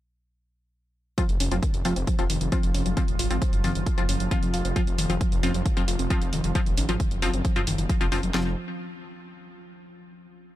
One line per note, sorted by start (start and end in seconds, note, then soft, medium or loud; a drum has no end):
1.18 8.39 F3 medium
1.18 1.23 F3 medium
1.18 1.26 F3 medium
1.18 1.23 C4 medium
1.18 8.39 F4 medium
1.18 1.23 F4 loud
1.18 kick loud
1.18 closed hi-hat medium
1.29 1.37 F1 medium
1.29 closed hi-hat medium
1.40 1.48 F1 loud
1.40 1.46 C#4 medium
1.40 open hi-hat loud
1.51 1.59 F1 medium
1.51 1.57 F3 medium
1.51 1.55 F#3 medium
1.51 1.57 C4 medium
1.51 1.57 F4 medium
1.51 closed hi-hat medium
1.63 1.66 D#3 medium
1.63 kick loud
1.63 closed hi-hat medium
1.74 1.82 F1 medium
1.74 closed hi-hat medium
1.85 1.93 F1 medium
1.85 1.94 F3 medium
1.85 1.94 C4 medium
1.85 1.90 F4 loud
1.85 1.94 F4 medium
1.85 open hi-hat medium
1.96 2.04 F1 loud
1.96 2.02 C4 medium
1.96 closed hi-hat medium
2.07 2.13 F3 loud
2.07 kick loud
2.07 closed hi-hat medium
2.19 2.27 F1 medium
2.19 2.24 F3 loud
2.19 2.24 C4 medium
2.19 2.24 F4 loud
2.19 closed hi-hat medium
2.30 2.38 F1 loud
2.30 2.35 D#3 loud
2.30 open hi-hat loud
2.41 2.49 F1 medium
2.41 2.46 D#3 medium
2.41 closed hi-hat medium
2.52 2.60 F3 medium
2.52 2.94 F3 medium
2.52 2.94 C4 medium
2.52 2.94 F4 medium
2.52 kick loud
2.52 closed hi-hat medium
2.63 2.71 F1 medium
2.63 closed hi-hat medium
2.75 2.82 F1 loud
2.75 2.80 C#4 medium
2.75 open hi-hat medium
2.86 2.94 F1 medium
2.86 2.89 F#3 medium
2.86 closed hi-hat medium
2.97 3.00 D#3 medium
2.97 3.02 F3 medium
2.97 3.02 C4 medium
2.97 3.02 F4 loud
2.97 kick loud
2.97 closed hi-hat medium
3.08 3.16 D#1 medium
3.08 closed hi-hat medium
3.19 3.27 G#1 loud
3.19 3.25 F4 loud
3.19 open hi-hat loud
3.31 3.38 G#1 medium
3.31 3.36 F3 medium
3.31 3.36 C4 medium
3.31 3.36 F4 medium
3.31 closed hi-hat medium
3.42 3.47 F3 loud
3.42 kick loud
3.42 closed hi-hat medium
3.53 3.61 F#1 medium
3.53 closed hi-hat medium
3.64 3.72 F#1 loud
3.64 3.69 D#3 loud
3.64 3.73 F3 medium
3.64 3.73 C4 medium
3.64 3.73 F4 loud
3.64 open hi-hat medium
3.75 3.83 F#1 medium
3.75 3.81 D#3 medium
3.75 closed hi-hat medium
3.86 3.95 F3 medium
3.86 kick loud
3.86 closed hi-hat medium
3.98 4.06 F#1 medium
3.98 4.03 F3 loud
3.98 4.03 C4 medium
3.98 4.03 F4 loud
3.98 closed hi-hat medium
4.09 4.17 F#1 loud
4.09 4.14 C#4 medium
4.09 open hi-hat loud
4.20 4.28 F#1 medium
4.20 4.23 F#3 medium
4.20 closed hi-hat medium
4.31 4.35 D#3 medium
4.31 4.73 F3 medium
4.31 4.73 C4 medium
4.31 4.73 F4 loud
4.31 kick loud
4.31 closed hi-hat medium
4.43 4.50 F1 medium
4.43 closed hi-hat medium
4.54 4.62 F1 loud
4.54 4.59 F4 loud
4.54 open hi-hat medium
4.65 4.73 F1 medium
4.65 4.70 C4 medium
4.65 closed hi-hat medium
4.76 4.81 F3 medium
4.76 4.81 F3 loud
4.76 4.81 C4 medium
4.76 4.81 F4 loud
4.76 kick loud
4.76 closed hi-hat medium
4.87 4.95 F1 medium
4.87 closed hi-hat medium
4.98 5.06 F1 loud
4.98 5.04 D#3 loud
4.98 open hi-hat loud
5.10 5.18 F1 medium
5.10 5.15 D#3 medium
5.10 5.15 F3 medium
5.10 5.15 C4 medium
5.10 5.15 F4 medium
5.10 closed hi-hat medium
5.21 5.29 F3 medium
5.21 kick loud
5.21 closed hi-hat medium
5.32 5.40 F1 medium
5.32 closed hi-hat medium
5.43 5.51 F1 loud
5.43 5.52 F3 medium
5.43 5.52 C4 medium
5.43 5.49 C#4 medium
5.43 5.52 F4 medium
5.43 open hi-hat medium
5.54 5.62 F1 loud
5.54 5.58 F#3 medium
5.54 closed hi-hat medium
5.65 5.69 D#3 medium
5.65 kick loud
5.65 closed hi-hat medium
5.77 5.85 F1 medium
5.77 5.82 F3 loud
5.77 5.82 C4 medium
5.77 5.82 F4 loud
5.77 closed hi-hat medium
5.88 5.96 F1 loud
5.88 5.93 F4 loud
5.88 open hi-hat loud
5.99 6.07 F1 medium
5.99 6.05 C4 medium
5.99 closed hi-hat medium
6.10 6.16 F3 loud
6.10 6.52 F3 medium
6.10 6.52 C4 medium
6.10 6.52 F4 loud
6.10 kick loud
6.10 closed hi-hat medium
6.22 6.29 F1 medium
6.22 closed hi-hat medium
6.33 6.41 F1 loud
6.33 6.38 D#3 loud
6.33 open hi-hat loud
6.44 6.52 F1 medium
6.44 6.49 D#3 medium
6.44 closed hi-hat medium
6.55 6.61 F3 medium
6.55 6.63 F3 medium
6.55 6.61 C4 medium
6.55 6.61 F4 loud
6.55 kick loud
6.55 closed hi-hat medium
6.66 6.74 D#1 medium
6.66 closed hi-hat medium
6.78 6.86 G#1 loud
6.78 6.83 C#4 medium
6.78 open hi-hat loud
6.89 6.97 G#1 medium
6.89 6.94 F3 medium
6.89 6.92 F#3 medium
6.89 6.94 C4 medium
6.89 6.94 F4 medium
6.89 closed hi-hat medium
7.00 7.03 D#3 medium
7.00 kick loud
7.00 closed hi-hat medium
7.11 7.19 F#1 medium
7.11 closed hi-hat medium
7.22 7.30 F#1 loud
7.22 7.31 F3 medium
7.22 7.31 C4 medium
7.22 7.31 F4 loud
7.22 7.28 F4 loud
7.22 open hi-hat medium
7.34 7.41 F#1 medium
7.34 7.39 C4 medium
7.34 closed hi-hat medium
7.45 7.50 F3 loud
7.45 kick loud
7.45 closed hi-hat medium
7.56 7.64 F#1 medium
7.56 7.61 F3 loud
7.56 7.61 C4 medium
7.56 7.61 F4 loud
7.56 closed hi-hat medium
7.67 7.75 F#1 loud
7.67 7.72 D#3 loud
7.67 open hi-hat loud
7.78 7.86 F#1 medium
7.78 7.84 D#3 medium
7.78 closed hi-hat medium
7.89 7.98 F3 medium
7.89 kick loud
7.89 closed hi-hat medium
8.01 8.09 F1 medium
8.01 8.06 F3 loud
8.01 8.06 C4 medium
8.01 8.06 F4 loud
8.01 closed hi-hat medium
8.12 8.20 F1 loud
8.12 8.21 F3 loud
8.12 8.21 C4 medium
8.12 8.17 C#4 medium
8.12 8.21 F4 loud
8.12 open hi-hat loud
8.23 8.31 F1 medium
8.23 8.26 F#3 medium
8.23 closed hi-hat medium
8.34 8.55 F1 medium
8.34 8.55 F3 medium
8.34 8.51 F3 medium
8.34 8.51 C4 medium
8.34 8.51 F4 loud
8.34 snare loud